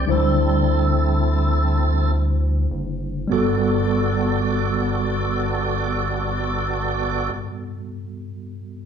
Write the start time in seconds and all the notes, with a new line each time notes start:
Already playing: D5
0.07 D2 D3 F#3 G3 D4 E4 C5
0.11 G3 C4 E4 A4
2.70 F#1
3.28 G1 G2 G3 B3 F#4
3.32 G3 F#4 A4 D5